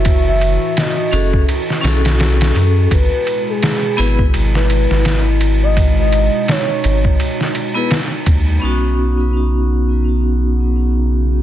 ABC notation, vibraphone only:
X:1
M:4/4
L:1/16
Q:"Swing 16ths" 1/4=84
K:E
V:1 name="Vibraphone"
z6 [CFGA] z3 [CFGA]6 | z6 [B,EGB] z8 z | z8 z3 [B,EGB] z4 | [B,CDF]16 |]